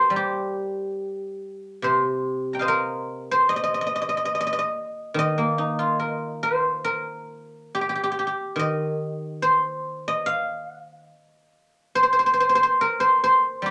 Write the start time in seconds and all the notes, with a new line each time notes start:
Already playing: G4 A#4 C5
0.10 G3
0.16 G4
1.82 C3 C5
2.53 G5 A#5
2.59 C5 D#5 F5
2.68 A#4
3.31 C5
3.49 D#5
3.56 D#5
3.64 D#5
3.74 D#5
3.81 D#5
3.87 D#5
3.96 D#5
4.02 D#5
4.09 D#5
4.17 D#5
4.25 D#5
4.35 D#5
4.41 D#5
4.47 D#5
4.53 D#5
4.59 D#5
5.14 D#3
5.19 D#5
5.38 A#3
5.58 D#4
5.79 F4
6.00 A#4
6.43 C5
6.84 A#4
7.75 G4
7.81 G4
7.89 G4
7.95 G4
8.04 G4
8.12 G4
8.19 G4
8.27 G4
8.56 D#3 D#5
9.42 C5
10.08 D#5
10.26 F5
10.69 F#5
10.80 F5
11.95 C5
12.03 C5
12.13 C5
12.19 C5
12.26 C5
12.34 C5
12.40 C5
12.49 C5
12.55 C5
12.63 C5
12.81 A#4
13.00 C5
13.24 C5
13.62 G3 G4